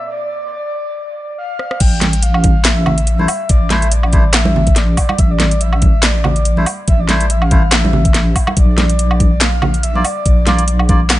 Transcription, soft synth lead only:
Already playing: E5
0.11 D5
1.38 F5
1.80 G5
2.23 F5
2.65 E5
3.50 D5
3.71 E5
3.92 D5
4.34 E5
4.77 D5
4.88 D5
5.19 E5
5.31 D5
5.61 E5
6.04 D5
6.88 E5
7.00 D5
7.31 E5
7.42 F5
7.73 E5
8.57 D5
9.41 F5
9.84 E5
10.05 D5

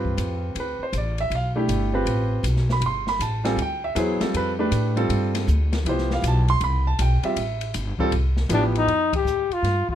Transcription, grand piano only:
Already playing: C4 F4 G4 B4
0.60 B4
0.83 C5
0.97 D5
1.21 E5
1.35 F5
1.56 A3 D4 E4 G4
1.94 C4 F4 G4 B4
2.72 B5
2.86 C6
3.09 B5
3.22 A5
3.44 G3 C4 F4 A4 G#5
3.62 G5
3.84 E5
3.95 F#3 B3 E4 G#4 C5
4.20 G3 C4 F4 A4
4.37 B4
4.59 A3 D4 G4 B4
4.96 G3 C4 F4 A4
5.86 F3 B3 E4 G4 C5
6.13 F5
6.27 A5
6.50 C6
6.64 B5
6.87 A5
7.02 G5
7.23 G3 C4 F4 G4 E5
7.99 G3 C4 F4 A4
8.49 F3 B3 E4 G4

